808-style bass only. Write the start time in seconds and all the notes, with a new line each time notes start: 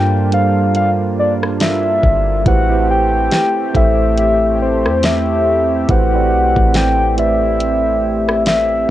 Already playing: G2
2.03 G1
2.46 A1
3.75 A1
4.85 E2
5.89 A1
6.32 B1
6.57 A1